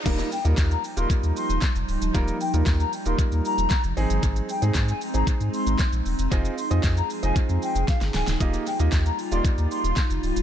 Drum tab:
CC |x---------------|----------------|----------------|----------------|
HH |xxoxxxoxxxoxxxox|xxoxxxoxxxoxxxox|xxoxxxoxxxoxxxox|xxoxxxoxxxoxxxox|
SH |xxxxxxxxxxxxxxxx|xxxxxxxxxxxxxxxx|xxxxxxxxxxxxxxxx|xxxxxxxxxxxxxxxx|
CP |----x-------x---|----x-------x---|----x-------x---|----x-----------|
SD |----o-------o---|----o-------o---|----o-------o---|----o-------oooo|
BD |o---o---o---o---|o---o---o---o---|o---o---o---o---|o---o---o---o---|

CC |----------------|
HH |xxoxxxoxxxoxxxox|
SH |xxxxxxxxxxxxxxxx|
CP |----x-------x---|
SD |----o-------o---|
BD |o---o---o---o---|